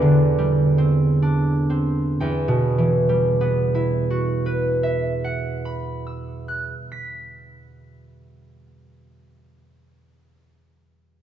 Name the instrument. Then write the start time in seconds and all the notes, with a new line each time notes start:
harp
Already playing: E2 G3 D4 D5 E5
0.02 D3
0.38 G3
0.78 C4
1.22 D4
1.70 C4
2.20 E2 G5
2.48 B2
2.78 E3
3.09 G3
3.41 B3
3.75 E4
4.10 F#4
4.46 B4
4.83 E5
5.24 F#5
5.65 B5
6.07 E6
6.48 F#6
6.92 B6